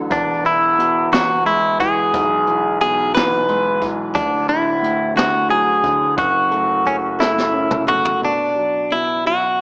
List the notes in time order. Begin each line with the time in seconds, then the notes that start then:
Already playing: A1 A2 D3 F#3
0.10 E1 E2 D4, kick, closed hi-hat
0.44 E3 E4, closed hi-hat
0.78 B2, closed hi-hat
1.12 E3 F#4, snare, closed hi-hat
1.45 G#3 E4, closed hi-hat
1.80 E3 G#4, kick, closed hi-hat
2.14 B1, kick, closed hi-hat
2.47 E3, closed hi-hat
2.81 B2 G#4, closed hi-hat
3.15 E3 B4, snare, closed hi-hat
3.49 G#3, closed hi-hat
3.82 E3, kick, closed hi-hat
4.15 D1 D2 D4, kick, closed hi-hat
4.49 D3 E4, closed hi-hat
4.82 A2, closed hi-hat
5.16 D3 F#4, snare, closed hi-hat
5.50 F#3 G#4, closed hi-hat
5.83 D3, kick, closed hi-hat
6.17 F#1 F#2 F#4, kick, closed hi-hat
6.51 A3, closed hi-hat
6.85 C#3 C#4, closed hi-hat
7.19 A3 E4, snare
7.38 snare
7.53 C#4
7.71 mid tom
7.87 A3 F#4, mid tom
8.05 floor tom
8.22 B2 D4
8.56 F#3
8.92 B2 E4
9.26 F#3 F#4